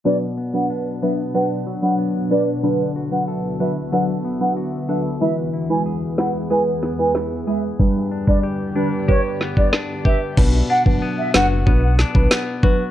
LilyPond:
<<
  \new Staff \with { instrumentName = "Flute" } { \time 4/4 \key b \minor \tempo 4 = 93 d''16 r8 fis''16 r8 e''16 r16 fis''16 r8 fis''16 r8 d''16 r16 | r8. fis''16 r8 e''16 r16 fis''16 r8 fis''16 r8 e''16 r16 | e''16 r8 gis''16 r8 fis''16 r16 gis''16 r8 gis''16 r8 e''16 r16 | r8. d''16 r8 b'16 r16 cis''16 r8 d''16 r8 e''16 r16 |
r8 fis''16 r8 e''16 fis''16 r2 r16 | }
  \new Staff \with { instrumentName = "Clean electric guitar" } { \time 4/4 \key b \minor b,8 b8 d'8 b8 d'8 fis8 b8 d'8 | d8 fis'8 a'8 fis'8 a'8 b8 fis'8 a'8 | e8 e'8 gis'8 e'8 gis'8 b8 e'8 gis'8 | g,8 d'8 g'8 d'8 g'8 b8 d'8 g'8 |
b,8 d'8 b8 fis'8 b8 d'8 b8 fis'8 | }
  \new Staff \with { instrumentName = "Synth stab" } { \time 4/4 \key b \minor <fis d' b'>16 r8 <fis d' b'>8. <fis d' b'>8 <fis d' b'>8. <fis d' b'>16 r8 <fis d' b'>16 r16 | <fis d' b'>16 r8 <fis d' b'>8. <fis d' b'>8 <fis d' b'>8. <fis d' b'>16 r8 <fis d' b'>16 r16 | <gis e' b'>16 r8 <gis e' b'>8. <gis e' b'>8 <gis e' b'>8. <gis e' b'>16 r8 <gis e' b'>16 r16 | <g d' b'>16 r8 <g d' b'>8. <g d' b'>8 <g d' b'>8. <g d' b'>16 r8 <g d' b'>16 r16 |
<fis d' b'>16 r8 <fis d' b'>8. <fis d' b'>8 <fis d' b'>8. <fis d' b'>16 r8 <fis d' b'>16 r16 | }
  \new Staff \with { instrumentName = "Ambient pad" } { \time 4/4 \key b \minor << { <b, fis b' fis''>1 | <d, d fis' e''>1 | <e, e gis' b'>1 | <g, d g' d''>1 |
r1 | } \\ { d'1 | b1~ | b1~ | b1 |
r1 | } >> }
  \new Staff \with { instrumentName = "Sub bass" } { \clef bass \time 4/4 \key b \minor r1 | r1 | r1 | r1 |
b,,8 r16 g,,16 r8 fis,,8 b,,8. b,,16 r4 | }
  \new DrumStaff \with { instrumentName = "Drums" } \drummode { \time 4/4 r4 r4 r4 r4 | r4 r4 r4 r4 | r4 r8 sn8 r8 sn8 sn4 | bd8. bd16 r4 bd8 sn16 bd16 <ss sn>8 bd8 |
<cymc bd>8. bd16 r8 sn8 bd8 sn16 bd16 sn8 bd8 | }
>>